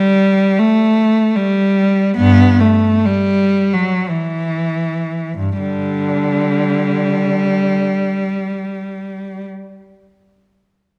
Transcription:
0, 0, Header, 1, 2, 480
1, 0, Start_track
1, 0, Key_signature, 1, "major"
1, 0, Tempo, 785340
1, 1318, Time_signature, 3, 2, 24, 8
1, 1318, Tempo, 898204
1, 1798, Tempo, 1029160
1, 2278, Tempo, 1290323
1, 2758, Tempo, 1115242
1, 3718, Tempo, 1081081
1, 5220, End_track
2, 0, Start_track
2, 0, Title_t, "Cello"
2, 0, Program_c, 0, 42
2, 0, Note_on_c, 0, 55, 61
2, 350, Note_off_c, 0, 55, 0
2, 359, Note_on_c, 0, 57, 61
2, 827, Note_off_c, 0, 57, 0
2, 829, Note_on_c, 0, 55, 57
2, 1319, Note_off_c, 0, 55, 0
2, 1325, Note_on_c, 0, 59, 72
2, 1326, Note_on_c, 0, 43, 53
2, 1537, Note_off_c, 0, 43, 0
2, 1548, Note_off_c, 0, 59, 0
2, 1555, Note_on_c, 0, 57, 54
2, 1800, Note_off_c, 0, 57, 0
2, 1800, Note_on_c, 0, 55, 60
2, 2113, Note_off_c, 0, 55, 0
2, 2114, Note_on_c, 0, 54, 51
2, 2279, Note_off_c, 0, 54, 0
2, 2281, Note_on_c, 0, 52, 43
2, 2759, Note_on_c, 0, 43, 37
2, 2760, Note_off_c, 0, 52, 0
2, 2854, Note_off_c, 0, 43, 0
2, 2854, Note_on_c, 0, 50, 35
2, 2854, Note_on_c, 0, 55, 43
2, 3800, Note_off_c, 0, 50, 0
2, 4540, Note_off_c, 0, 55, 0
2, 5220, End_track
0, 0, End_of_file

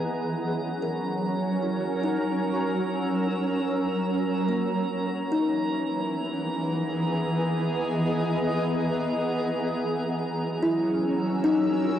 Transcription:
0, 0, Header, 1, 4, 480
1, 0, Start_track
1, 0, Tempo, 815217
1, 9, Time_signature, 3, 2, 24, 8
1, 7061, End_track
2, 0, Start_track
2, 0, Title_t, "Synth texture"
2, 0, Program_c, 0, 99
2, 0, Note_on_c, 0, 82, 83
2, 7061, Note_off_c, 0, 82, 0
2, 7061, End_track
3, 0, Start_track
3, 0, Title_t, "Ambient pad"
3, 0, Program_c, 1, 92
3, 0, Note_on_c, 1, 68, 74
3, 12, Note_on_c, 1, 54, 82
3, 114, Note_on_c, 1, 61, 85
3, 537, Note_on_c, 1, 70, 69
3, 925, Note_off_c, 1, 68, 0
3, 1288, Note_on_c, 1, 88, 62
3, 2883, Note_off_c, 1, 88, 0
3, 2885, Note_on_c, 1, 52, 78
3, 2888, Note_off_c, 1, 54, 0
3, 3198, Note_on_c, 1, 59, 66
3, 3534, Note_on_c, 1, 68, 82
3, 3670, Note_off_c, 1, 61, 0
3, 3770, Note_off_c, 1, 70, 0
3, 4198, Note_on_c, 1, 75, 71
3, 5781, Note_off_c, 1, 52, 0
3, 5781, Note_off_c, 1, 75, 0
3, 5782, Note_off_c, 1, 59, 0
3, 5786, Note_on_c, 1, 54, 92
3, 5848, Note_on_c, 1, 61, 73
3, 6274, Note_on_c, 1, 88, 92
3, 6411, Note_on_c, 1, 70, 88
3, 6922, Note_off_c, 1, 68, 0
3, 7061, Note_off_c, 1, 54, 0
3, 7061, Note_off_c, 1, 61, 0
3, 7061, Note_off_c, 1, 70, 0
3, 7061, Note_off_c, 1, 88, 0
3, 7061, End_track
4, 0, Start_track
4, 0, Title_t, "Kalimba"
4, 0, Program_c, 2, 108
4, 0, Note_on_c, 2, 73, 67
4, 222, Note_off_c, 2, 73, 0
4, 485, Note_on_c, 2, 70, 65
4, 958, Note_on_c, 2, 64, 46
4, 1198, Note_on_c, 2, 63, 65
4, 2075, Note_off_c, 2, 70, 0
4, 2559, Note_off_c, 2, 64, 0
4, 2641, Note_on_c, 2, 58, 56
4, 2804, Note_off_c, 2, 63, 0
4, 3106, Note_off_c, 2, 58, 0
4, 3131, Note_on_c, 2, 63, 68
4, 4744, Note_off_c, 2, 63, 0
4, 6256, Note_on_c, 2, 64, 59
4, 6736, Note_on_c, 2, 63, 68
4, 7061, Note_off_c, 2, 63, 0
4, 7061, Note_off_c, 2, 64, 0
4, 7061, End_track
0, 0, End_of_file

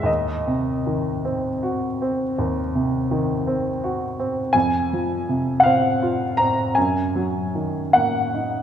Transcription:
0, 0, Header, 1, 2, 480
1, 0, Start_track
1, 0, Tempo, 763359
1, 50, Time_signature, 12, 3, 24, 8
1, 1489, Tempo, 732601
1, 4369, Tempo, 797872
1, 5489, End_track
2, 0, Start_track
2, 0, Title_t, "Upright piano"
2, 0, Program_c, 0, 0
2, 0, Control_c, 0, 64, 127
2, 0, Note_on_c, 0, 44, 42
2, 0, Note_on_c, 0, 52, 43
2, 0, Note_on_c, 0, 56, 47
2, 0, Note_on_c, 0, 64, 41
2, 19, Note_on_c, 0, 39, 47
2, 37, Note_on_c, 0, 75, 59
2, 59, Control_c, 0, 64, 0
2, 64, Note_off_c, 0, 52, 0
2, 64, Note_off_c, 0, 64, 0
2, 65, Note_off_c, 0, 44, 0
2, 65, Note_off_c, 0, 56, 0
2, 162, Control_c, 0, 64, 127
2, 297, Note_on_c, 0, 48, 41
2, 544, Note_on_c, 0, 51, 42
2, 689, Note_off_c, 0, 48, 0
2, 785, Note_on_c, 0, 60, 48
2, 925, Note_off_c, 0, 51, 0
2, 1024, Note_on_c, 0, 66, 51
2, 1160, Note_off_c, 0, 60, 0
2, 1269, Note_on_c, 0, 60, 48
2, 1398, Note_off_c, 0, 66, 0
2, 1449, Note_off_c, 0, 39, 0
2, 1499, Note_on_c, 0, 39, 49
2, 1644, Note_off_c, 0, 60, 0
2, 1739, Note_on_c, 0, 48, 51
2, 1976, Note_on_c, 0, 51, 53
2, 2115, Note_off_c, 0, 48, 0
2, 2212, Note_on_c, 0, 60, 52
2, 2352, Note_off_c, 0, 51, 0
2, 2452, Note_on_c, 0, 66, 47
2, 2587, Note_off_c, 0, 60, 0
2, 2672, Note_off_c, 0, 75, 0
2, 2686, Note_on_c, 0, 60, 49
2, 2824, Note_off_c, 0, 66, 0
2, 2894, Note_off_c, 0, 39, 0
2, 2904, Note_on_c, 0, 80, 78
2, 2916, Note_on_c, 0, 41, 57
2, 2919, Note_off_c, 0, 60, 0
2, 2926, Control_c, 0, 64, 0
2, 3004, Control_c, 0, 64, 127
2, 3168, Note_on_c, 0, 53, 44
2, 3403, Note_on_c, 0, 48, 46
2, 3547, Note_off_c, 0, 53, 0
2, 3594, Note_off_c, 0, 80, 0
2, 3605, Note_on_c, 0, 78, 64
2, 3629, Note_on_c, 0, 77, 71
2, 3641, Note_off_c, 0, 78, 0
2, 3643, Note_on_c, 0, 60, 50
2, 3786, Note_off_c, 0, 48, 0
2, 3884, Note_on_c, 0, 65, 52
2, 4029, Note_off_c, 0, 60, 0
2, 4113, Note_on_c, 0, 82, 82
2, 4119, Note_off_c, 0, 77, 0
2, 4125, Note_on_c, 0, 60, 45
2, 4273, Note_off_c, 0, 65, 0
2, 4345, Note_off_c, 0, 41, 0
2, 4360, Note_on_c, 0, 80, 65
2, 4365, Note_off_c, 0, 82, 0
2, 4371, Note_off_c, 0, 60, 0
2, 4376, Note_on_c, 0, 42, 52
2, 4380, Control_c, 0, 64, 0
2, 4479, Control_c, 0, 64, 127
2, 4603, Note_on_c, 0, 54, 46
2, 4841, Note_on_c, 0, 51, 43
2, 4984, Note_off_c, 0, 54, 0
2, 5073, Note_on_c, 0, 78, 69
2, 5075, Note_off_c, 0, 80, 0
2, 5084, Note_on_c, 0, 58, 44
2, 5222, Note_off_c, 0, 51, 0
2, 5319, Note_on_c, 0, 63, 39
2, 5476, Note_off_c, 0, 58, 0
2, 5489, Note_off_c, 0, 42, 0
2, 5489, Note_off_c, 0, 63, 0
2, 5489, Note_off_c, 0, 78, 0
2, 5489, End_track
0, 0, End_of_file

